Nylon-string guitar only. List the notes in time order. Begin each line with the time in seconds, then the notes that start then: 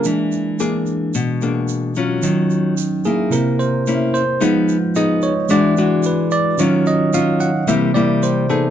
Already playing: A#3 D4 G#4
0.06 E3
0.60 A#3 D4 G#4
1.15 B2
1.42 A#3 D4 G#4
1.96 F#3 C#4 F4
2.23 D#3
3.05 A#3 E4
3.32 C3
3.87 A#3 C#4 E4
4.40 F3 B3 D#4 G#4
4.96 B3 D#4 G#4
5.50 E3 G#3 D4 F#4
5.78 G#3 D4 F#4
6.59 D#3 F#3 C#4 F4
7.13 F#3 C#4 F4
7.67 C3 G3 A#3 E4
7.95 G3 A#3 E4
8.49 B3 D#4 G#4